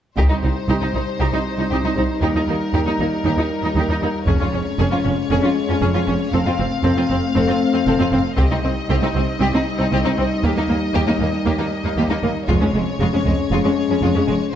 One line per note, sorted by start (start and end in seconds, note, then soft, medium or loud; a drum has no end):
0.17 0.22 C2 soft
0.17 0.23 C2 soft
0.17 4.24 G3 soft
0.17 4.24 D#4 soft
0.17 0.23 D#4 soft
0.17 0.23 G4 medium
0.17 2.19 C5 soft
0.17 taiko soft
0.30 0.35 C2 soft
0.30 0.35 D#4 soft
0.30 0.36 D#4 soft
0.43 0.48 C2 soft
0.43 0.49 C2 soft
0.43 0.49 C4 soft
0.43 0.49 D#4 soft
0.68 0.74 C2 soft
0.68 0.74 D#4 soft
0.68 0.74 G4 soft
0.82 0.87 C2 soft
0.82 0.87 D#4 soft
0.94 0.99 C2 soft
0.94 1.00 C2 soft
0.94 0.99 C4 soft
0.94 1.00 D#4 soft
1.20 1.25 C2 soft
1.20 1.25 D#4 medium
1.20 1.25 G4 medium
1.33 1.38 C2 soft
1.33 1.38 D#4 soft
1.33 1.39 D#4 soft
1.58 1.63 C2 soft
1.58 1.63 D#4 soft
1.58 1.64 D#4 soft
1.70 1.76 C2 soft
1.70 1.77 C2 soft
1.70 1.77 D#4 soft
1.70 1.75 G4 soft
1.84 1.90 C2 soft
1.84 1.89 D#4 soft
1.84 1.90 D#4 soft
1.96 2.02 C2 soft
1.96 2.02 C4 soft
1.96 2.02 D#4 soft
2.21 2.27 D#2 soft
2.21 2.28 D#2 medium
2.21 2.27 D#4 medium
2.21 2.27 G4 soft
2.21 4.24 A#4 soft
2.35 2.40 D#2 soft
2.35 2.40 D#4 soft
2.35 2.41 D#4 soft
2.47 2.53 D#2 soft
2.47 2.54 D#2 soft
2.47 2.53 A#3 soft
2.47 2.53 D#4 soft
2.73 2.79 D#2 medium
2.73 2.79 D#2 soft
2.73 2.79 D#4 soft
2.73 2.80 G4 soft
2.86 2.91 D#2 soft
2.86 2.92 D#4 soft
2.99 3.05 D#2 soft
2.99 3.05 A#3 soft
2.99 3.05 D#4 soft
3.24 3.30 D#2 medium
3.24 3.30 D#2 soft
3.24 3.30 D#4 soft
3.24 3.31 G4 soft
3.37 3.43 D#2 soft
3.37 3.43 D#4 soft
3.37 3.44 D#4 soft
3.63 3.68 D#2 soft
3.63 3.69 D#4 soft
3.63 3.70 D#4 soft
3.75 3.80 D#2 soft
3.75 3.81 D#2 medium
3.75 3.82 D#4 soft
3.75 3.83 G4 soft
3.88 3.93 D#2 soft
3.88 3.95 D#4 soft
3.88 3.96 D#4 soft
4.01 4.07 D#2 soft
4.01 4.09 A#3 soft
4.01 4.07 D#4 soft
4.26 4.33 F1 medium
4.26 4.32 F2 medium
4.26 6.28 G#3 medium
4.26 6.28 C#4 medium
4.26 4.32 C#4 medium
4.26 4.33 G#4 soft
4.26 6.29 C#5 soft
4.26 taiko soft
4.39 4.45 F2 soft
4.39 4.45 C#4 soft
4.39 4.46 F4 soft
4.52 4.59 F1 soft
4.52 4.58 F2 soft
4.52 4.58 C#4 soft
4.52 4.59 C#4 soft
4.79 4.84 F1 medium
4.79 4.84 F2 medium
4.79 4.84 C#4 medium
4.79 4.84 G#4 medium
4.91 4.97 F2 soft
4.91 4.97 C#4 soft
4.91 4.97 F4 soft
5.04 5.11 F1 soft
5.04 5.10 F2 soft
5.04 5.09 C#4 soft
5.04 5.10 C#4 soft
5.30 5.36 F1 medium
5.30 5.36 F2 medium
5.30 5.35 C#4 medium
5.30 5.36 G#4 medium
5.42 5.49 F2 soft
5.42 5.48 C#4 soft
5.42 5.49 F4 soft
5.69 5.74 F2 soft
5.69 5.74 C#4 soft
5.69 5.75 F4 soft
5.81 5.87 F1 medium
5.81 5.86 F2 medium
5.81 5.86 C#4 soft
5.81 5.87 G#4 medium
5.94 5.99 F2 soft
5.94 5.99 C#4 soft
5.94 6.00 F4 soft
6.07 6.13 F1 soft
6.07 6.12 F2 soft
6.07 6.12 C#4 soft
6.07 6.13 C#4 soft
6.31 6.39 F1 medium
6.31 6.38 F2 medium
6.31 8.21 A3 medium
6.31 6.38 C4 medium
6.31 8.21 C4 medium
6.31 6.39 A4 medium
6.31 8.37 F5 soft
6.46 6.51 F2 soft
6.46 6.51 C4 soft
6.46 6.51 F4 soft
6.58 6.65 F1 soft
6.58 6.63 F2 soft
6.58 6.64 C4 soft
6.83 6.89 F1 medium
6.83 6.88 F2 medium
6.83 6.89 C4 medium
6.83 6.89 A4 medium
6.96 7.01 F2 soft
6.96 7.02 C4 soft
6.96 7.03 F4 soft
7.09 7.16 F1 soft
7.09 7.14 F2 soft
7.09 7.15 C4 soft
7.09 7.16 C4 soft
7.35 7.42 F1 medium
7.35 7.40 F2 medium
7.35 7.40 C4 medium
7.35 7.41 A4 medium
7.48 7.53 F2 soft
7.48 7.53 C4 soft
7.48 7.54 F4 soft
7.73 7.79 F2 soft
7.73 7.79 C4 soft
7.73 7.79 F4 soft
7.86 7.92 F1 medium
7.86 7.92 F2 medium
7.86 7.92 C4 medium
7.86 7.92 A4 medium
7.99 8.04 F2 soft
7.99 8.04 C4 soft
7.99 8.05 F4 soft
8.12 8.18 F1 soft
8.12 8.17 F2 soft
8.12 8.17 C4 soft
8.12 8.18 C4 soft
8.38 8.43 C2 medium
8.38 12.45 G3 medium
8.38 8.43 C4 medium
8.38 12.45 D#4 medium
8.38 8.43 G4 medium
8.38 12.44 D#5 soft
8.38 taiko soft
8.51 8.56 C2 soft
8.51 8.56 C4 soft
8.51 8.56 D#4 soft
8.64 8.69 C2 soft
8.64 8.69 C4 soft
8.89 8.95 C2 medium
8.89 8.94 C4 medium
8.89 8.95 G4 medium
9.02 9.07 C2 soft
9.02 9.07 C4 soft
9.02 9.08 D#4 soft
9.15 9.20 C2 soft
9.15 9.20 C2 medium
9.15 9.20 C4 soft
9.15 9.21 C4 soft
9.40 9.46 C2 medium
9.40 9.45 C4 medium
9.40 9.46 G4 medium
9.53 9.59 C2 soft
9.53 9.59 C4 soft
9.53 9.60 D#4 medium
9.78 9.85 C2 soft
9.78 9.84 C4 soft
9.78 9.86 D#4 soft
9.92 9.97 C2 medium
9.92 9.97 C4 medium
9.92 9.97 G4 medium
10.05 10.10 C2 soft
10.05 10.10 C4 soft
10.05 10.10 D#4 medium
10.17 10.23 C2 soft
10.17 10.22 C4 medium
10.17 10.25 C4 medium
10.43 10.49 D#2 medium
10.43 10.48 A#3 medium
10.43 10.50 G4 medium
10.56 10.62 D#2 soft
10.56 10.61 A#3 soft
10.56 10.62 D#4 soft
10.68 10.74 D#2 soft
10.68 10.75 D#2 soft
10.68 10.73 A#3 soft
10.68 10.74 A#3 soft
10.94 10.99 D#2 medium
10.94 11.01 D#2 medium
10.94 10.99 A#3 medium
10.94 11.00 G4 medium
11.06 11.13 D#2 soft
11.06 11.12 A#3 soft
11.06 11.13 D#4 soft
11.19 11.25 D#2 soft
11.19 11.27 D#2 soft
11.19 11.24 A#3 soft
11.19 11.27 A#3 soft
11.45 11.51 D#2 medium
11.45 11.52 D#2 medium
11.45 11.50 A#3 medium
11.45 11.52 G4 medium
11.58 11.65 D#2 soft
11.58 11.64 A#3 soft
11.58 11.64 D#4 soft
11.84 11.90 D#2 soft
11.84 11.89 A#3 soft
11.84 11.89 D#4 soft
11.97 12.03 D#2 medium
11.97 12.02 A#3 medium
11.97 12.02 G4 medium
12.10 12.15 D#2 soft
12.10 12.15 A#3 soft
12.10 12.15 D#4 soft
12.22 12.28 D#2 soft
12.22 12.29 D#2 soft
12.22 12.28 A#3 soft
12.48 12.54 F1 medium
12.48 12.54 F2 medium
12.48 12.54 G#3 medium
12.48 14.50 G#3 medium
12.48 14.50 C#4 medium
12.48 12.53 F4 medium
12.48 14.50 C#5 medium
12.48 taiko soft
12.61 12.67 F2 soft
12.61 12.67 G#3 soft
12.61 12.66 C#4 soft
12.74 12.79 F1 soft
12.74 12.80 F2 soft
12.74 12.79 G#3 soft
12.74 12.80 G#3 soft
12.99 13.05 F1 medium
12.99 13.06 F2 medium
12.99 13.05 G#3 medium
12.99 13.06 F4 medium
13.13 13.19 F2 soft
13.13 13.18 G#3 soft
13.13 13.18 C#4 soft
13.24 13.30 F1 soft
13.24 13.31 F2 soft
13.24 13.31 G#3 soft
13.24 taiko soft
13.50 13.56 F1 medium
13.50 13.57 F2 medium
13.50 13.57 G#3 medium
13.50 13.57 F4 medium
13.64 13.69 F2 soft
13.64 13.69 G#3 soft
13.64 13.69 C#4 soft
13.90 13.95 F2 soft
13.90 13.95 G#3 soft
13.90 13.95 C#4 soft
14.02 14.07 F1 medium
14.02 14.08 F2 medium
14.02 14.08 G#3 medium
14.02 14.07 F4 medium
14.15 14.21 F2 soft
14.15 14.21 G#3 soft
14.15 14.20 C#4 soft
14.27 14.33 F1 soft
14.27 14.34 F2 soft
14.27 14.33 G#3 soft
14.27 14.34 G#3 soft